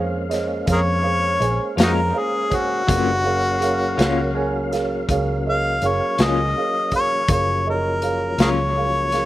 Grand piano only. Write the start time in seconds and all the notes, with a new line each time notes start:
Already playing: G#4 C5 C#5 F5
0.29 G#4 C5 C#5 D#5
0.65 G#4 C5 C#5 F5
1.02 G#4 C5 C#5 F5
1.40 G#4 C5 C#5 G#5
1.75 G#4 C5 C#5 F5
2.12 G#4 C5 C#5 F5
2.49 G#4 C5 C#5 G#5
2.86 G#4 A#4 C#5 F5
3.23 G#4 A#4 C#5 F5
3.60 G#4 A#4 C#5 F5
3.96 G#4 A#4 C#5 F5
4.34 G#4 A#4 C#5 G#5
4.70 G#4 A#4 C#5 F5
5.08 G#4 A#4 C#5 F5
5.45 G#4 A#4 C#5 D#5
5.82 G#4 A#4 C#5 F5
6.19 G#4 A#4 C#5 G#5
6.56 G#4 A#4 C#5 F5
6.91 G#4 A#4 C#5 F5
7.28 G#4 A#4 C#5 F5
7.65 G#4 A#4 C#5 D#5
8.02 G#4 A#4 C#5 F5
8.39 G#4 A#4 C#5 F5
8.75 G#4 A#4 C#5 F5
9.12 G#4 A#4 C#5 F5